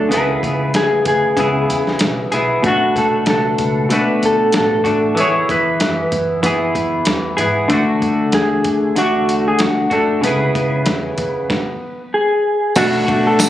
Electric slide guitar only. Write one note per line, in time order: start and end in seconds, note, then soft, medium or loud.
0.00 0.13 A4 medium
0.13 0.71 B4 medium
0.76 1.07 G#4 loud
1.08 2.29 G#4 medium
2.66 2.98 F#4 medium
2.98 3.26 A4 medium
3.30 3.88 A4 medium
3.93 4.25 B4 medium
4.26 4.56 A4 medium
4.57 5.21 A4 medium
5.20 5.51 C#5 medium
5.51 6.09 B4 medium
8.34 8.98 G#4 medium
8.98 9.48 F#4 medium
9.48 9.60 G#4 medium
9.61 9.92 F#4 medium
9.93 10.22 A4 medium
10.25 12.41 B4 medium
12.14 12.73 G#4 medium
12.77 13.27 F#4 medium
13.27 13.49 A4 medium